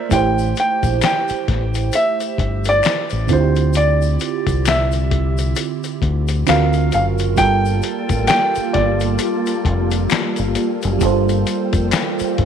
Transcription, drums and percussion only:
0.11 kick loud
0.11 closed hi-hat medium
0.11 shaker medium
0.38 shaker soft
0.56 closed hi-hat medium
0.56 shaker soft
0.83 kick medium
0.83 closed hi-hat soft
0.83 shaker soft
1.02 finger snap medium
1.02 snare loud
1.02 closed hi-hat medium
1.02 shaker medium
1.04 finger snap medium
1.28 closed hi-hat soft
1.28 shaker soft
1.48 kick medium
1.48 snare soft
1.48 closed hi-hat medium
1.74 closed hi-hat soft
1.74 shaker soft
1.92 closed hi-hat medium
1.92 shaker medium
2.20 closed hi-hat soft
2.20 shaker soft
2.38 kick medium
2.38 closed hi-hat medium
2.64 closed hi-hat soft
2.64 shaker soft
2.83 finger snap soft
2.83 snare loud
2.83 closed hi-hat medium
2.83 shaker medium
2.87 finger snap medium
3.10 closed hi-hat soft
3.10 shaker soft
3.28 kick loud
3.28 closed hi-hat medium
3.28 shaker soft
3.56 closed hi-hat soft
3.56 shaker soft
3.73 closed hi-hat medium
3.73 shaker medium
4.02 shaker soft
4.20 closed hi-hat medium
4.20 shaker soft
4.47 kick medium
4.47 closed hi-hat soft
4.47 shaker soft
4.65 finger snap medium
4.65 snare loud
4.65 closed hi-hat medium
4.65 shaker medium
4.69 finger snap medium
4.92 closed hi-hat soft
4.92 shaker soft
5.11 kick medium
5.11 closed hi-hat medium
5.38 closed hi-hat soft
5.38 shaker soft
5.56 closed hi-hat medium
5.56 shaker medium
5.84 closed hi-hat soft
5.84 shaker soft
6.02 kick medium
6.02 closed hi-hat medium
6.28 closed hi-hat soft
6.28 shaker soft
6.47 finger snap medium
6.47 snare loud
6.47 closed hi-hat medium
6.47 shaker medium
6.50 finger snap loud
6.73 closed hi-hat soft
6.73 shaker soft
6.92 closed hi-hat medium
6.92 shaker soft
7.18 closed hi-hat soft
7.18 shaker soft
7.37 kick loud
7.37 closed hi-hat medium
7.37 shaker medium
7.65 shaker soft
7.82 closed hi-hat medium
7.82 shaker soft
8.09 kick medium
8.09 closed hi-hat soft
8.09 shaker soft
8.27 finger snap medium
8.27 snare loud
8.27 closed hi-hat medium
8.27 shaker medium
8.31 finger snap medium
8.55 closed hi-hat soft
8.55 shaker soft
8.74 kick medium
8.74 snare soft
8.74 closed hi-hat medium
9.00 closed hi-hat soft
9.00 shaker soft
9.19 closed hi-hat medium
9.19 shaker medium
9.46 closed hi-hat soft
9.46 shaker soft
9.65 kick medium
9.65 closed hi-hat medium
9.91 closed hi-hat soft
9.91 shaker soft
10.10 finger snap medium
10.10 snare loud
10.10 closed hi-hat medium
10.10 shaker medium
10.13 finger snap loud
10.36 closed hi-hat soft
10.36 shaker soft
10.55 closed hi-hat medium
10.55 shaker soft
10.82 closed hi-hat soft
10.82 shaker soft
11.01 kick loud
11.01 closed hi-hat medium
11.01 shaker medium
11.29 closed hi-hat soft
11.29 shaker soft
11.46 closed hi-hat medium
11.46 shaker soft
11.73 kick medium
11.73 closed hi-hat soft
11.73 shaker soft
11.91 finger snap medium
11.91 snare loud
11.91 closed hi-hat medium
11.91 shaker medium
11.94 finger snap medium
12.19 closed hi-hat soft
12.19 shaker soft
12.38 kick medium
12.38 closed hi-hat medium

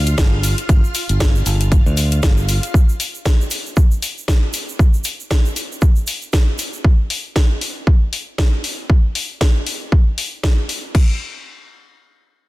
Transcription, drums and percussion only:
0.06 closed hi-hat medium
0.06 shaker soft
0.18 kick loud
0.18 snare loud
0.18 closed hi-hat soft
0.18 shaker soft
0.43 open hi-hat loud
0.43 shaker medium
0.58 closed hi-hat medium
0.58 shaker soft
0.69 kick loud
0.69 closed hi-hat soft
0.69 shaker soft
0.84 shaker soft
0.95 open hi-hat loud
0.95 shaker loud
1.09 closed hi-hat medium
1.09 shaker soft
1.20 kick loud
1.20 snare loud
1.20 closed hi-hat soft
1.20 shaker soft
1.35 shaker soft
1.46 open hi-hat loud
1.46 shaker medium
1.61 closed hi-hat medium
1.61 shaker soft
1.72 kick loud
1.72 closed hi-hat soft
1.72 shaker soft
1.87 shaker soft
1.97 open hi-hat loud
1.97 shaker medium
2.11 closed hi-hat medium
2.11 shaker soft
2.23 kick loud
2.23 snare loud
2.23 closed hi-hat soft
2.23 shaker medium
2.37 shaker soft
2.49 open hi-hat loud
2.49 shaker medium
2.63 closed hi-hat medium
2.63 shaker soft
2.74 kick loud
2.74 shaker medium
2.89 shaker soft
3.00 open hi-hat loud
3.00 shaker medium
3.15 shaker soft
3.25 kick loud
3.25 snare loud
3.25 shaker soft
3.41 shaker soft
3.51 open hi-hat medium
3.51 shaker medium
3.66 shaker soft
3.76 kick loud
3.76 shaker soft
3.91 shaker soft
4.02 open hi-hat medium
4.02 shaker medium
4.18 shaker soft
4.28 kick loud
4.28 snare loud
4.28 shaker soft
4.53 open hi-hat loud
4.53 shaker medium
4.69 shaker soft
4.79 kick loud
4.79 shaker soft
4.94 shaker soft
5.04 open hi-hat medium
5.04 shaker medium
5.20 shaker soft
5.31 kick medium
5.31 snare loud
5.31 shaker soft
5.45 shaker soft
5.56 open hi-hat medium
5.56 shaker medium
5.72 shaker soft
5.81 kick loud
5.81 shaker soft
5.96 shaker soft
6.07 open hi-hat medium
6.07 shaker medium
6.22 shaker soft
6.33 kick medium
6.33 snare loud
6.33 shaker soft
6.59 open hi-hat medium
6.59 shaker medium
6.73 shaker soft
6.84 kick loud
7.10 open hi-hat medium
7.36 kick medium
7.36 snare loud
7.61 open hi-hat medium
7.87 kick loud
8.13 open hi-hat medium
8.38 kick medium
8.38 snare loud
8.64 open hi-hat medium
8.90 kick loud
9.15 open hi-hat medium
9.41 kick medium
9.41 snare loud
9.67 open hi-hat medium
9.92 kick loud
10.18 open hi-hat medium
10.43 kick medium
10.43 snare loud
10.69 open hi-hat medium
10.95 kick loud
10.95 crash medium

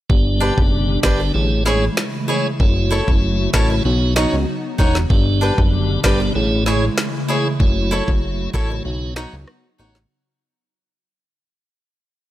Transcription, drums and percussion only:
0.10 kick loud
0.58 kick loud
1.03 finger snap medium
1.03 kick medium
1.03 snare loud
1.66 snare medium
1.97 finger snap medium
1.97 snare loud
2.60 kick loud
3.08 kick loud
3.54 finger snap medium
3.54 kick medium
3.54 snare loud
4.16 finger snap medium
4.16 snare loud
4.79 kick medium
4.95 snare medium
5.10 kick loud
5.58 kick loud
6.04 finger snap medium
6.04 kick medium
6.04 snare loud
6.66 snare medium
6.98 finger snap medium
6.98 snare loud
7.60 kick loud
8.08 kick loud
8.54 kick medium
9.16 finger snap medium
9.16 snare loud
9.48 cross-stick medium
9.95 snare medium

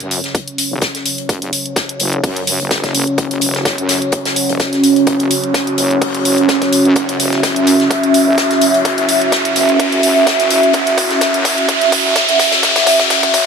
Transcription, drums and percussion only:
0.00 closed hi-hat soft
0.11 closed hi-hat medium
0.11 open hi-hat medium
0.24 snare medium
0.24 closed hi-hat soft
0.35 kick loud
0.35 closed hi-hat medium
0.48 closed hi-hat medium
0.58 closed hi-hat medium
0.58 open hi-hat loud
0.81 kick loud
0.81 snare loud
0.81 closed hi-hat medium
0.95 snare soft
0.95 closed hi-hat medium
1.06 closed hi-hat medium
1.06 open hi-hat medium
1.18 closed hi-hat soft
1.29 kick loud
1.29 closed hi-hat medium
1.42 closed hi-hat medium
1.42 closed hi-hat soft
1.53 closed hi-hat medium
1.53 open hi-hat loud
1.66 closed hi-hat soft
1.76 kick loud
1.76 snare loud
1.76 closed hi-hat medium
1.89 closed hi-hat medium
1.99 closed hi-hat medium
1.99 open hi-hat loud
2.13 closed hi-hat soft
2.23 kick loud
2.23 closed hi-hat medium
2.23 open hi-hat medium
2.36 closed hi-hat medium
2.47 closed hi-hat medium
2.47 open hi-hat loud
2.60 closed hi-hat soft
2.71 kick loud
2.71 snare loud
2.71 closed hi-hat medium
2.84 kick medium
2.84 snare medium
2.84 closed hi-hat medium
2.95 closed hi-hat medium
2.95 open hi-hat medium
3.07 closed hi-hat soft
3.18 kick loud
3.18 closed hi-hat medium
3.31 closed hi-hat soft
3.41 closed hi-hat medium
3.41 open hi-hat loud
3.55 snare soft
3.55 closed hi-hat soft
3.65 kick loud
3.65 snare loud
3.65 closed hi-hat medium
3.78 closed hi-hat medium
3.89 snare loud
3.89 closed hi-hat medium
3.89 open hi-hat loud
4.02 closed hi-hat soft
4.12 kick loud
4.12 closed hi-hat medium
4.25 snare medium
4.25 closed hi-hat soft
4.25 closed hi-hat medium
4.36 open hi-hat loud
4.49 closed hi-hat medium
4.59 kick loud
4.59 snare loud
4.59 closed hi-hat medium
4.73 snare soft
4.73 closed hi-hat soft
4.84 closed hi-hat medium
4.84 open hi-hat loud
4.96 closed hi-hat soft
5.06 kick loud
5.06 closed hi-hat medium
5.19 closed hi-hat soft
5.30 closed hi-hat medium
5.30 open hi-hat loud
5.44 closed hi-hat soft
5.54 kick loud
5.54 snare loud
5.54 closed hi-hat medium
5.67 closed hi-hat soft
5.78 closed hi-hat medium
5.78 open hi-hat loud
5.91 closed hi-hat soft
6.01 kick loud
6.01 closed hi-hat medium
6.01 open hi-hat medium
6.14 closed hi-hat soft
6.25 closed hi-hat medium
6.25 open hi-hat loud
6.37 closed hi-hat soft
6.48 kick loud
6.48 snare loud
6.48 closed hi-hat medium
6.62 kick medium
6.62 snare soft
6.62 closed hi-hat soft
6.73 closed hi-hat medium
6.73 open hi-hat loud
6.85 closed hi-hat soft
6.95 kick loud
6.95 closed hi-hat medium
7.09 closed hi-hat medium
7.09 closed hi-hat soft
7.20 closed hi-hat medium
7.20 open hi-hat loud
7.32 snare soft
7.32 closed hi-hat soft
7.43 kick loud
7.43 snare loud
7.43 closed hi-hat medium
7.56 closed hi-hat soft
7.67 closed hi-hat medium
7.67 open hi-hat medium
7.80 snare soft
7.80 closed hi-hat soft
7.91 kick loud
7.91 closed hi-hat medium
8.03 closed hi-hat soft
8.14 closed hi-hat medium
8.14 open hi-hat loud
8.38 kick loud
8.38 snare loud
8.38 closed hi-hat medium
8.38 closed hi-hat loud
8.51 snare soft
8.51 closed hi-hat soft
8.61 closed hi-hat medium
8.61 open hi-hat medium
8.74 closed hi-hat soft
8.85 kick loud
8.85 closed hi-hat medium
8.98 closed hi-hat medium
8.98 closed hi-hat soft
9.08 closed hi-hat medium
9.08 open hi-hat medium
9.22 closed hi-hat soft
9.32 kick loud
9.32 snare loud
9.32 closed hi-hat medium
9.45 closed hi-hat medium
9.56 closed hi-hat medium
9.56 open hi-hat medium
9.69 closed hi-hat soft
9.79 kick loud
9.79 closed hi-hat medium
9.79 open hi-hat medium
9.92 closed hi-hat medium
10.03 closed hi-hat medium
10.03 open hi-hat loud
10.16 closed hi-hat soft
10.27 kick loud
10.27 snare loud
10.27 closed hi-hat medium
10.39 snare medium
10.39 closed hi-hat medium
10.50 closed hi-hat medium
10.50 open hi-hat medium
10.63 closed hi-hat soft
10.73 kick loud
10.73 closed hi-hat medium
10.87 closed hi-hat medium
10.87 closed hi-hat soft
10.98 kick loud
10.98 closed hi-hat medium
10.98 open hi-hat medium
11.10 snare soft
11.10 closed hi-hat soft
11.21 kick loud
11.21 snare loud
11.21 closed hi-hat medium
11.34 closed hi-hat medium
11.45 kick loud
11.45 closed hi-hat medium
11.45 open hi-hat medium
11.58 closed hi-hat soft
11.69 kick loud
11.69 closed hi-hat medium
11.81 snare soft
11.81 closed hi-hat medium
11.92 kick loud
11.92 closed hi-hat medium
11.92 open hi-hat loud
12.15 kick loud
12.15 snare loud
12.15 closed hi-hat medium
12.29 snare soft
12.29 closed hi-hat medium
12.39 kick loud
12.39 snare loud
12.39 closed hi-hat medium
12.39 open hi-hat medium
12.52 snare loud
12.52 closed hi-hat medium
12.52 closed hi-hat soft
12.63 kick loud
12.63 snare loud
12.63 closed hi-hat medium
12.76 kick loud
12.76 snare loud
12.76 closed hi-hat medium
12.87 kick loud
12.87 snare loud
12.87 closed hi-hat medium
12.87 open hi-hat loud
12.99 kick medium
12.99 snare loud
12.99 closed hi-hat medium
12.99 closed hi-hat soft
13.10 kick loud
13.10 snare loud
13.10 closed hi-hat medium
13.23 kick medium
13.23 closed hi-hat medium
13.33 kick loud
13.33 closed hi-hat medium
13.33 open hi-hat medium

